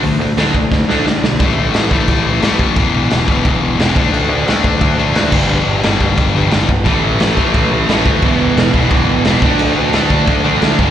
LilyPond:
<<
  \new Staff \with { instrumentName = "Distorted electric guitar" } { \clef bass \time 4/4 \key d \lydian \tempo 4 = 176 <d a>8 <d a>8 <d a d'>8 <d a>8 <d a>8 <d a d'>8 <d a>8 <d a>8 | <a, e a>4. <a, e a>4. <a, e a>4 | <e, b, e>4. <e, b, e>4. <e, b, e>8 <d a d'>8~ | <d a d'>4 <d a d'>4. <d a d'>4 <g, d g>8~ |
<g, d g>4 <g, d g>4. <g, d g>4 r8 | <a, e a>4. <a, e a>4. <a, e a>4 | <e, b, e>4. <e, b, e>4. <e, b, e>8 <d a d'>8~ | <d a d'>4 <d a d'>4. <d a d'>4 <g, d g>8 | }
  \new Staff \with { instrumentName = "Distorted electric guitar" } { \clef bass \time 4/4 \key d \lydian <d a>8 <d a>8 <d a d'>8 <d a>8 <d a>8 <d a d'>8 <d a>8 <d a>8 | r1 | r1 | r1 |
r1 | <a, e a>4. <a, e a>4. <a, e a>4 | <e, b, e>4. <e, b, e>4. <e, b, e>8 <d a d'>8~ | <d a d'>4 <d a d'>4. <d a d'>4 <g, d g>8 | }
  \new Staff \with { instrumentName = "Picked electric bass" } { \clef bass \time 4/4 \key d \lydian d,8 d,8 d,8 d,8 d,8 d,8 d,8 b,,8 | a,,8 a,,8 a,,8 a,,8 a,,8 a,,8 a,,8 a,,8 | e,,8 e,,8 e,,8 e,,8 e,,8 e,,8 e,,8 d,8 | d,8 d,8 d,8 d,8 d,8 d,8 d,8 g,,8 |
g,,8 g,,8 g,,8 g,,8 g,,8 g,,8 g,,8 g,,8 | a,,8 a,,8 a,,8 a,,8 a,,8 a,,8 a,,8 d,8 | e,,8 e,,8 e,,8 e,,8 e,,8 e,,8 e,,8 d,8 | d,8 d,8 d,8 d,8 d,8 d,8 d,8 g,,8 | }
  \new DrumStaff \with { instrumentName = "Drums" } \drummode { \time 4/4 hho4 <hho sn>8 bd8 <bd sn>8 sn8 sn8 sn8 | <cymc bd>4 <cymc sn>8 bd8 <cymc bd>4 <cymc sn>8 bd8 | <cymc bd>4 <cymc sn>8 bd8 <cymc bd>4 <cymc sn>8 bd8 | cymc4 <cymc sn>8 bd8 <cymc bd>4 <cymc sn>8 <cymc bd>8 |
cymc4 <cymc sn>8 bd8 <cymc bd>4 <cymc sn>8 bd8 | <cymc bd>4 <cymc sn>8 bd8 <cymc bd>4 <cymc sn>8 bd8 | <cymc bd>4 <cymc sn>8 bd8 <cymc bd>4 <cymc sn>8 bd8 | cymc4 <cymc sn>8 bd8 <cymc bd>4 <cymc sn>8 bd8 | }
>>